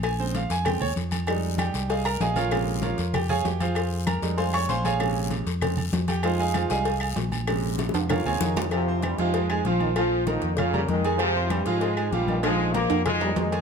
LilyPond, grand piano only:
<<
  \new Staff \with { instrumentName = "Grand piano" } { \time 4/4 \key f \minor \tempo 4 = 194 aes''8 c''8 f''8 aes''8 g''8 des''8 r4 | r4 <g' g''>4 <aes' ees'' f'' aes''>8 <bes' bes''>8 <aes' ees'' f'' aes''>8 <f' bes' des'' f''>8~ | <f' bes' des'' f''>4 <f' bes' des'' f''>4 <g' g''>8 <aes' des'' f'' aes''>8 <g' g''>8 <f' aes' c'' f''>8~ | <f' aes' c'' f''>4 <bes' bes''>4 <c'' f'' aes'' c'''>8 <des'' des'''>8 <c'' f'' aes'' c'''>8 <aes' des'' f'' aes''>8~ |
<aes' des'' f'' aes''>4 r2 r8 <g' g''>8 | <f' aes' c'' f''>8 <aes' ees'' f'' aes''>8 <f' aes' c'' f''>8 <aes' ees'' f'' aes''>4. r4 | r2 <f' bes' des'' f''>8 <aes' des'' f'' aes''>4~ <aes' des'' f'' aes''>16 r16 | r8 <c' c'' c'''>4 <f f' f''>4 <aes aes' aes''>8 <f f' f''>4 |
<f f' f''>4 <bes bes' bes''>4 <f' f'' f'''>8 <bes bes' bes''>4 <aes aes' aes''>8~ | <aes aes' aes''>8 <c' c'' c'''>4 <f f' f''>4 <aes aes' aes''>8 <f f' f''>4 | <f f' f''>4 <bes bes' bes''>4 <f' f'' f'''>8 <bes bes' bes''>4 <aes aes' aes''>8 | }
  \new Staff \with { instrumentName = "Grand piano" } { \clef bass \time 4/4 \key f \minor r8 <des aes c'>8 r4 <des aes c'>8 r4. | <g aes ees'>1 | <c des aes>4. r2 r8 | r4. <g aes ees'>2~ <g aes ees'>8 |
<c des aes>4. r8 <des aes c'>8 r4. | <f aes ees'>4. <g aes ees'>8 r2 | <c des aes>2~ <c des aes>8 <des aes c'>8 r4 | r1 |
r1 | r1 | r1 | }
>>